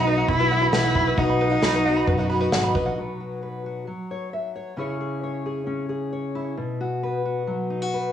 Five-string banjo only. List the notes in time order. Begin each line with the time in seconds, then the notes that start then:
Already playing: F#5 B5
0.07 B4
0.18 F#5
0.28 B5
0.40 B4
0.51 F#5
0.62 B5
0.73 B4
0.84 F#5
0.96 B5
1.07 B4
1.18 F#5
1.30 B5
1.41 B4
1.52 F#5
1.63 B5
1.74 B4
1.85 F#5
1.97 B5
2.07 B4
2.19 F#5
2.30 B5
2.41 B4
2.52 F#5
2.64 B5
2.75 B4
2.86 F#5